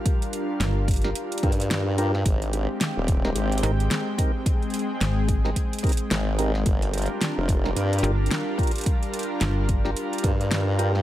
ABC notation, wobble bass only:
X:1
M:4/4
L:1/16
Q:"Swing 16ths" 1/4=109
K:Gphr
V:1 name="Wobble bass" clef=bass
z8 z2 G,,6 | A,,,3 z2 E,,,3 A,,,2 z6 | z12 A,,,4 | G,,,3 z2 F,,,3 G,,2 z6 |
z8 z2 G,,6 |]